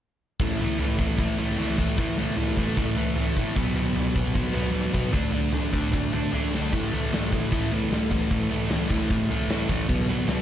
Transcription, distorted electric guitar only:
0.40 A2 E3 A3
0.61 A2 E3 A3
0.79 A2 E3 A3
0.99 A2 E3 A3
1.17 A2 E3 A3
1.38 A2 E3 A3
1.57 A2 E3 A3
1.77 A2 E3 A3
1.98 A2 E3 A3
2.18 A2 E3 A3
2.36 A2 E3 A3
2.58 A2 E3 A3
2.77 A2 E3 A3
2.96 A2 E3 A3
3.17 A2 E3 A3
3.38 A2 E3 A3
3.56 B2 F#3 B3
3.77 B2 F#3 B3
3.95 B2 F#3 B3
4.16 B2 F#3 B3
4.34 B2 F#3 B3
4.53 B2 F#3 B3
4.72 B2 F#3 B3
4.93 B2 F#3 B3
5.12 D3 A3 D4
5.31 D3 A3 D4
5.53 D3 A3 D4
5.72 D3 A3 D4
5.91 D3 A3 D4
6.13 D3 A3 D4
6.32 D3 A3 D4
6.54 D3 A3 D4
6.74 A2 E3 A3
6.92 A2 E3 A3
7.12 A2 E3 A3
7.31 A2 E3 A3
7.52 A2 E3 A3
7.72 A2 E3 A3
7.91 A2 E3 A3
8.11 A2 E3 A3
8.30 A2 E3 A3
8.50 A2 E3 A3
8.70 A2 E3 A3
8.90 A2 E3 A3
9.09 A2 E3 A3
9.30 A2 E3 A3
9.51 A2 E3 A3
9.69 A2 E3 A3
9.89 B2 F#3 B3
10.08 B2 F#3 B3
10.28 B2 F#3 B3

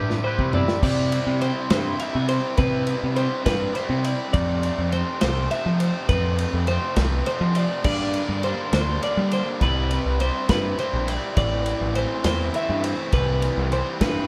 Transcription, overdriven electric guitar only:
Already playing: C3 G3 C4 E4
0.23 C3 G3 C4 E4
0.51 G3 C4 E4
0.82 C3 G3 C4 E4
1.11 G3 C4 E4
1.41 C3 G3 C4 E4
1.70 G3 C4 E4
2.00 C3 G3 C4 E4
2.29 G3 C4 E4
2.58 C3 G3 C4 E4
2.87 G3 C4 E4
3.16 C3 G3 C4 E4
3.45 G3 C4 E4
3.73 C3 G3 C4 E4
4.03 G3 C4 E4
4.32 F2 C3 F3 A3 C4
4.62 F3 A3 C4
4.91 C3 F3 A3 C4
5.21 F3 A3 C4
5.51 C3 F3 A3 C4
5.80 F3 A3 C4
6.09 F2 C3 F3 A3 C4
6.38 F3 A3 C4
6.67 C3 F3 A3 C4
6.96 F3 A3 C4
7.26 C3 F3 A3 C4
7.55 F3 A3 C4
7.85 G2 D3 G3 A#3 D4
8.15 G3 A#3 D4
8.44 D3 G3 A#3 D4
8.72 G3 A#3 D4
9.02 D3 G3 A#3 D4
9.32 G3 A#3 D4
9.60 C3 G3 C4 E4
9.91 G3 C4 E4
10.20 C3 G3 C4 E4
10.49 G3 C4 E4
10.77 C3 G3 C4 E4
11.07 G3 C4 E4
11.36 A2 E3 A3 C4 E4
11.65 A3 C4 E4
11.95 E3 A3 C4 E4
12.24 A3 C4 E4
12.54 E3 A3 C4 E4
12.83 A3 C4 E4
13.12 C3 E3 G3 C4 E4
13.42 G3 C4 E4
13.72 E3 G3 C4 E4
14.01 G3 C4 E4

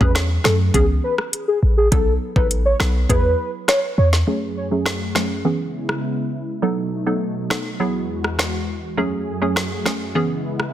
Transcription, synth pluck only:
0.01 F#3 A3 C#4 G#4
0.45 F#3 A3 C#4 G#4
0.74 E3 B3 C#4 G#4
1.92 F#3 B3 D#4 A4
2.36 F#3 B3 D#4 A4
2.80 F#3 B3 D#4 A4
3.09 F#3 B3 E4 G#4
4.27 F#3 A3 C#4 G#4
4.71 F#3 A3 C#4 G#4
5.15 F#3 A3 C#4 G#4
5.45 E3 B3 C#4 G#4
6.62 F#3 B3 D#4 A4
7.06 F#3 B3 D#4 A4
7.50 F#3 B3 D#4 A4
7.80 F#3 B3 E4 G#4
8.97 F#3 A3 C#4 G#4
9.42 F#3 A3 C#4 G#4
9.86 F#3 A3 C#4 G#4
10.15 E3 B3 C#4 G#4

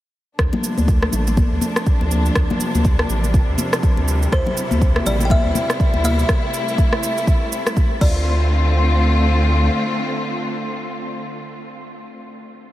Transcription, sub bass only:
0.39 D2
0.78 D2
1.13 A1
1.52 D2
2.01 D2
2.36 D2
2.75 D2
3.09 A1
3.48 D2
3.98 D2
4.32 D2
4.71 D2
5.06 A1
5.45 D2
5.94 D2
8.01 D2

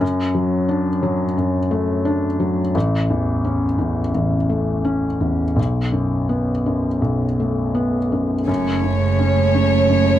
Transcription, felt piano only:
0.01 F#2
0.35 F#3
0.69 D4
1.03 F#3
1.37 F#2
1.71 A3
2.05 D4
2.40 F#3
2.75 A1
3.10 E2
3.44 C#4
3.78 E2
4.14 A1
4.49 A3
4.85 C#4
5.21 E2
5.56 B1
5.92 F#2
6.29 B3
6.66 F#2
7.02 B1
7.40 A3
7.75 B3
8.12 F#2
8.48 F#2
8.83 C#3
9.19 C#4
9.55 C#3
9.89 F#2

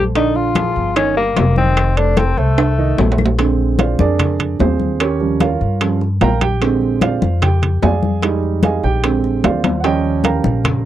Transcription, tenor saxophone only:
0.16 D#4
0.36 F4
0.97 C#4
1.17 A#3
1.57 C4
1.97 D4
2.18 C4
2.38 A3

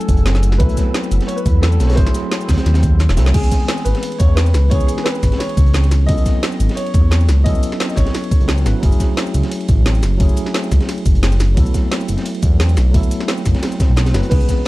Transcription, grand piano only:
Already playing: A4
0.58 B4
1.27 C#5
1.36 B4
1.61 A4
1.87 C#5
1.96 C5
3.33 G#4
3.85 B4
4.19 C#5
4.35 B4
4.70 C#5
4.87 G#4
5.04 B4
5.38 C#5
6.06 D#5
6.75 C#5
7.44 D#5
7.89 D#5
7.96 C#5
14.30 B4

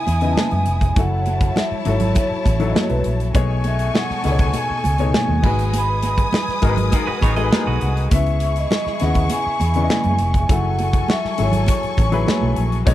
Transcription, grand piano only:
Already playing: C#3 B3 E4 D#5 E5
0.22 C#3 B3 E4 D#5
0.96 F#3 E4 F#4 A4
1.85 F#3 E4 F#4 A4
2.59 F#3 E4 F#4 A4
3.34 B2 A3 D#4 G#4 C#5
4.24 B2 A3 D#4 G#4 B4
4.32 C#5
4.99 B2 A3 D#4 G#4 C#5
5.43 G#3 D#4 F#4 B4
6.62 G#3 D#4 F#4 A#4
6.69 B4
7.22 B5
7.37 G#3 D#4 F#4 A4 G#5
7.44 B4
7.82 F#5
8.12 C#3 B3 E4 E5
9.01 C#3 B3 E4 D#5
9.75 C#3 B3 E4 D5
9.82 D#5
10.49 F#3 E4 G#4 A4
11.38 F#3 E4 G#4 A4
12.12 F#3 E4 G#4 B4
12.86 B2 G#3 A3 D#4 C#5

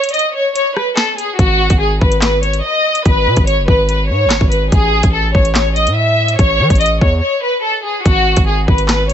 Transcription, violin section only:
Already playing: C#5
0.14 D#5
0.35 C#5
0.56 C#5
0.76 B4
0.97 A4
1.18 G#4
1.39 F#4
1.81 G#4
2.01 B4
2.22 B4
2.43 C#5
2.64 D#5
3.06 B4
3.47 C#5
3.68 B4
3.89 B4
4.10 C#5
4.51 B4
4.72 G#4
5.14 A4
5.35 C#5
5.56 C#5
5.76 D#5
5.97 E5
6.39 C#5
6.81 D#5
7.01 C#5
7.22 C#5
7.43 B4
7.64 A4
7.85 G#4
8.05 F#4
8.47 G#4
8.68 B4
8.89 B4
9.10 C#5

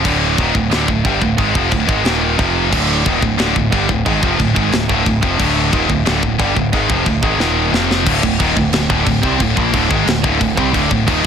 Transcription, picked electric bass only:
0.05 D1
0.39 D#1
0.55 D1
0.72 D1
0.88 D1
1.05 G1
1.22 D1
1.39 G#1
1.56 F1
1.72 D1
1.89 G#1
2.05 D#1
2.39 F1
2.73 D1
3.06 D#1
3.23 D1
3.39 D1
3.56 D1
3.73 G1
3.90 D1
4.06 G#1
4.23 F1
4.40 D1
4.57 G#1
4.73 D1
4.89 D1
5.07 D1
5.23 F1
5.40 D1
5.73 D#1
5.90 D1
6.07 D1
6.23 D1
6.40 G1
6.57 D1
6.73 G#1
6.90 F1
7.07 D1
7.23 G#1
7.39 D#1
7.73 F1
8.07 D1
8.24 D1
8.40 D#1
8.57 D1
8.74 D1
8.90 D1
9.07 D1
9.24 C2
9.40 D1
9.57 A#1
9.74 D1
9.91 G#1
10.07 D1
10.24 D1
10.41 D1
10.58 C2
10.74 D1
10.91 D1
11.08 D#1

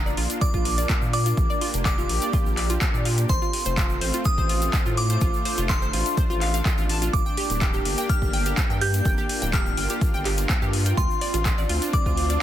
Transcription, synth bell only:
Already playing: A#5
0.41 D6
1.13 D6
1.85 D6
3.29 C6
4.25 D#6
4.97 D6
5.69 C6
7.13 D6
8.09 F6
8.81 G6
9.53 F6
10.97 C6
11.93 D6

